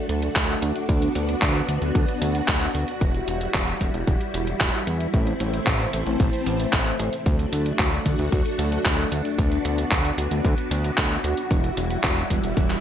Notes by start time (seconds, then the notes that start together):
Already playing: A3 D4 F#4
0.09 D2, closed hi-hat
0.22 closed hi-hat
0.36 D2, kick, clap, closed hi-hat
0.49 closed hi-hat
0.62 D2, closed hi-hat
0.76 closed hi-hat
0.89 D2 B3, kick, closed hi-hat
1.02 closed hi-hat
1.15 D2, closed hi-hat
1.29 closed hi-hat
1.42 D2, kick, clap, closed hi-hat
1.55 closed hi-hat
1.68 D2, closed hi-hat
1.82 D2, closed hi-hat
1.95 D2, kick, closed hi-hat
2.08 closed hi-hat
2.21 D2, closed hi-hat
2.35 closed hi-hat
2.48 D2, kick, clap, closed hi-hat
2.61 closed hi-hat
2.75 D2, closed hi-hat
2.88 closed hi-hat
3.01 E1 G3 E4, kick, closed hi-hat
3.15 closed hi-hat
3.28 E1, closed hi-hat
3.41 closed hi-hat
3.54 E1, kick, clap, closed hi-hat
3.68 closed hi-hat
3.81 E1, kick, closed hi-hat
3.94 E1, closed hi-hat
4.07 E1, kick, closed hi-hat
4.21 closed hi-hat
4.34 E1, closed hi-hat
4.47 closed hi-hat
4.61 E1, kick, clap, closed hi-hat
4.74 closed hi-hat
4.87 E2, closed hi-hat
5.00 closed hi-hat
5.14 A1 A3 C4, kick, closed hi-hat
5.27 closed hi-hat
5.40 A1, closed hi-hat
5.54 closed hi-hat
5.67 A1, kick, clap, closed hi-hat
5.80 closed hi-hat
5.93 A1, closed hi-hat
6.07 A1, closed hi-hat
6.20 A1, kick, closed hi-hat
6.33 closed hi-hat
6.46 A1, closed hi-hat
6.60 closed hi-hat
6.73 A1, kick, clap, closed hi-hat
6.86 closed hi-hat
6.99 A1, closed hi-hat
7.13 closed hi-hat
7.26 D2 A3 D4 F#4, kick, closed hi-hat
7.39 closed hi-hat
7.53 D2, closed hi-hat
7.66 closed hi-hat
7.79 D2, kick, clap, closed hi-hat
7.93 closed hi-hat
8.06 D2, kick, closed hi-hat
8.19 D2, closed hi-hat
8.32 D2, kick, closed hi-hat
8.46 closed hi-hat
8.59 D2, closed hi-hat
8.72 closed hi-hat
8.85 D2, kick, clap, closed hi-hat
8.99 closed hi-hat
9.12 D2, closed hi-hat
9.25 closed hi-hat
9.38 D2 B3 F#4, kick, closed hi-hat
9.52 closed hi-hat
9.65 D2, closed hi-hat
9.78 closed hi-hat
9.92 D2, kick, clap, closed hi-hat
10.05 closed hi-hat
10.18 D2, closed hi-hat
10.31 D2, closed hi-hat
10.45 D2, kick, closed hi-hat
10.58 closed hi-hat
10.71 D2, closed hi-hat
10.84 closed hi-hat
10.98 D2, kick, clap, closed hi-hat
11.11 closed hi-hat
11.24 D2, closed hi-hat
11.37 closed hi-hat
11.51 E1 G3 E4, kick, closed hi-hat
11.64 closed hi-hat
11.77 E1, closed hi-hat
11.91 closed hi-hat
12.04 E1, kick, clap, closed hi-hat
12.17 closed hi-hat
12.30 E1, kick, closed hi-hat
12.44 E1, closed hi-hat
12.57 E1, kick, closed hi-hat
12.70 clap, closed hi-hat